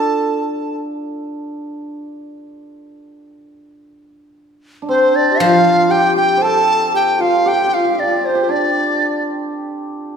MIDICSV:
0, 0, Header, 1, 5, 480
1, 0, Start_track
1, 0, Tempo, 1039861
1, 610, Time_signature, 2, 2, 24, 8
1, 1088, Tempo, 1016949
1, 3488, Tempo, 1045296
1, 4739, End_track
2, 0, Start_track
2, 0, Title_t, "Dizi"
2, 0, Program_c, 0, 73
2, 0, Note_on_c, 0, 81, 96
2, 354, Note_off_c, 0, 81, 0
2, 2286, Note_on_c, 0, 72, 80
2, 2409, Note_on_c, 0, 74, 85
2, 2416, Note_off_c, 0, 72, 0
2, 2517, Note_on_c, 0, 77, 103
2, 2524, Note_off_c, 0, 74, 0
2, 2765, Note_on_c, 0, 79, 100
2, 2772, Note_off_c, 0, 77, 0
2, 2883, Note_off_c, 0, 79, 0
2, 2886, Note_on_c, 0, 79, 94
2, 3006, Note_on_c, 0, 81, 109
2, 3013, Note_off_c, 0, 79, 0
2, 3247, Note_off_c, 0, 81, 0
2, 3258, Note_on_c, 0, 79, 90
2, 3379, Note_on_c, 0, 77, 86
2, 3386, Note_off_c, 0, 79, 0
2, 3505, Note_on_c, 0, 79, 100
2, 3512, Note_off_c, 0, 77, 0
2, 3625, Note_on_c, 0, 77, 83
2, 3632, Note_off_c, 0, 79, 0
2, 3742, Note_on_c, 0, 74, 76
2, 3749, Note_off_c, 0, 77, 0
2, 3820, Note_off_c, 0, 74, 0
2, 3820, Note_on_c, 0, 74, 53
2, 3862, Note_on_c, 0, 72, 72
2, 3869, Note_off_c, 0, 74, 0
2, 3974, Note_on_c, 0, 74, 76
2, 3981, Note_off_c, 0, 72, 0
2, 4332, Note_off_c, 0, 74, 0
2, 4739, End_track
3, 0, Start_track
3, 0, Title_t, "Hammered dulcimer"
3, 0, Program_c, 1, 15
3, 0, Note_on_c, 1, 62, 73
3, 0, Note_on_c, 1, 65, 74
3, 0, Note_on_c, 1, 69, 71
3, 391, Note_off_c, 1, 65, 0
3, 880, Note_off_c, 1, 69, 0
3, 904, Note_off_c, 1, 62, 0
3, 2251, Note_on_c, 1, 62, 53
3, 2282, Note_on_c, 1, 60, 69
3, 2530, Note_on_c, 1, 65, 78
3, 2770, Note_on_c, 1, 67, 79
3, 2881, Note_off_c, 1, 67, 0
3, 2883, Note_on_c, 1, 67, 81
3, 2984, Note_on_c, 1, 72, 65
3, 3017, Note_on_c, 1, 69, 85
3, 3373, Note_off_c, 1, 65, 0
3, 3375, Note_on_c, 1, 65, 77
3, 3493, Note_off_c, 1, 67, 0
3, 3495, Note_on_c, 1, 67, 78
3, 3526, Note_off_c, 1, 67, 0
3, 3528, Note_on_c, 1, 67, 52
3, 3566, Note_off_c, 1, 67, 0
3, 3568, Note_on_c, 1, 67, 59
3, 3594, Note_off_c, 1, 67, 0
3, 3596, Note_on_c, 1, 67, 48
3, 3626, Note_off_c, 1, 67, 0
3, 3628, Note_on_c, 1, 67, 52
3, 3671, Note_off_c, 1, 67, 0
3, 3673, Note_on_c, 1, 67, 46
3, 3699, Note_off_c, 1, 67, 0
3, 3701, Note_on_c, 1, 67, 52
3, 3741, Note_off_c, 1, 67, 0
3, 3743, Note_on_c, 1, 67, 47
3, 3779, Note_off_c, 1, 67, 0
3, 3781, Note_on_c, 1, 67, 55
3, 3811, Note_off_c, 1, 67, 0
3, 3813, Note_on_c, 1, 67, 51
3, 3839, Note_off_c, 1, 67, 0
3, 3841, Note_on_c, 1, 67, 55
3, 3877, Note_off_c, 1, 67, 0
3, 3879, Note_on_c, 1, 67, 53
3, 3904, Note_off_c, 1, 67, 0
3, 3906, Note_on_c, 1, 67, 65
3, 3966, Note_off_c, 1, 62, 0
3, 3968, Note_on_c, 1, 62, 59
3, 4154, Note_off_c, 1, 60, 0
3, 4211, Note_off_c, 1, 72, 0
3, 4373, Note_off_c, 1, 69, 0
3, 4739, Note_off_c, 1, 62, 0
3, 4739, Note_off_c, 1, 65, 0
3, 4739, Note_off_c, 1, 67, 0
3, 4739, End_track
4, 0, Start_track
4, 0, Title_t, "Xiao"
4, 0, Program_c, 2, 77
4, 0, Note_on_c, 2, 69, 79
4, 367, Note_off_c, 2, 69, 0
4, 2282, Note_on_c, 2, 72, 85
4, 2395, Note_off_c, 2, 72, 0
4, 2403, Note_on_c, 2, 62, 80
4, 2481, Note_on_c, 2, 67, 62
4, 2488, Note_off_c, 2, 62, 0
4, 2520, Note_on_c, 2, 65, 87
4, 2527, Note_off_c, 2, 67, 0
4, 2754, Note_on_c, 2, 67, 78
4, 2761, Note_off_c, 2, 65, 0
4, 2998, Note_on_c, 2, 69, 78
4, 3005, Note_off_c, 2, 67, 0
4, 3236, Note_off_c, 2, 69, 0
4, 3239, Note_on_c, 2, 67, 73
4, 3364, Note_on_c, 2, 65, 78
4, 3371, Note_off_c, 2, 67, 0
4, 3492, Note_on_c, 2, 67, 77
4, 3499, Note_off_c, 2, 65, 0
4, 3608, Note_off_c, 2, 67, 0
4, 3610, Note_on_c, 2, 65, 69
4, 3720, Note_on_c, 2, 62, 64
4, 3727, Note_off_c, 2, 65, 0
4, 3844, Note_on_c, 2, 72, 73
4, 3851, Note_off_c, 2, 62, 0
4, 3940, Note_on_c, 2, 65, 44
4, 3947, Note_off_c, 2, 72, 0
4, 3970, Note_on_c, 2, 62, 61
4, 3977, Note_off_c, 2, 65, 0
4, 4330, Note_off_c, 2, 62, 0
4, 4739, End_track
5, 0, Start_track
5, 0, Title_t, "Guzheng"
5, 0, Program_c, 3, 107
5, 2525, Note_on_c, 3, 53, 64
5, 3969, Note_off_c, 3, 53, 0
5, 4739, End_track
0, 0, End_of_file